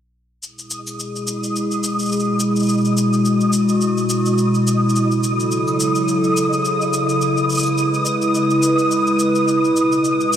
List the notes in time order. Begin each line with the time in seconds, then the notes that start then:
0.42 B2 G#3 E4 G#4 D#6, shaker
0.59 shaker
0.71 shaker
0.87 shaker
1.00 shaker
1.16 shaker
1.27 shaker
1.44 shaker
1.56 shaker
1.71 shaker
1.84 shaker
1.99 shaker
2.02 shaker
2.06 shaker
2.09 shaker
2.12 shaker
2.16 shaker
2.20 shaker
2.24 shaker
2.40 shaker
2.56 shaker
2.59 shaker
2.63 shaker
2.66 shaker
2.69 F#4, shaker
2.77 shaker
2.81 shaker
2.85 shaker
2.97 shaker
3.13 shaker
3.25 shaker
3.41 shaker
3.53 shaker
3.69 shaker
3.81 shaker
3.98 shaker
4.10 shaker
4.26 shaker
4.38 shaker
4.55 shaker
4.67 shaker
4.89 shaker
4.95 C#3 F#3 A4, shaker
5.11 shaker
5.24 shaker
5.40 shaker
5.52 shaker
5.67 shaker
5.80 shaker
5.95 shaker
6.08 shaker
6.24 shaker
6.37 shaker
6.53 shaker
6.65 shaker
6.81 shaker
6.93 shaker
7.09 shaker
7.20 G#3 B4, shaker
7.37 shaker
7.50 shaker
7.52 shaker
7.55 shaker
7.57 shaker
7.59 shaker
7.63 shaker
7.66 shaker
7.78 shaker
7.94 shaker
8.06 shaker
8.22 shaker
8.35 shaker
8.50 shaker
8.63 shaker
8.79 shaker
8.91 shaker
9.07 shaker
9.19 shaker
9.35 shaker
9.48 B2 G#3, shaker
9.65 shaker
9.76 shaker
9.92 shaker
10.05 shaker
10.21 shaker
10.33 shaker